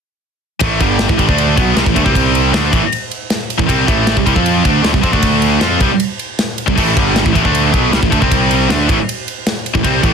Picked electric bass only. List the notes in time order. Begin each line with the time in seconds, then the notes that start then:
0.61 A1
0.81 G1
1.09 A1
1.19 A1
1.29 D2
1.58 B1
1.76 C2
1.86 A1
1.96 D2
2.06 C2
2.54 D2
2.73 A1
3.59 A1
3.69 C2
3.88 A1
4.17 C2
4.26 C2
4.36 F2
4.65 D2
4.84 D2
4.94 C2
5.03 F2
5.13 D2
5.62 F2
5.81 C2
6.68 C2
6.78 A1
6.97 G1
7.26 A1
7.35 A1
7.45 D2
7.74 B1
7.93 C2
8.03 A1
8.12 D2
8.22 C2
8.70 D2
8.89 A1
9.75 A1
9.85 C2
10.03 A1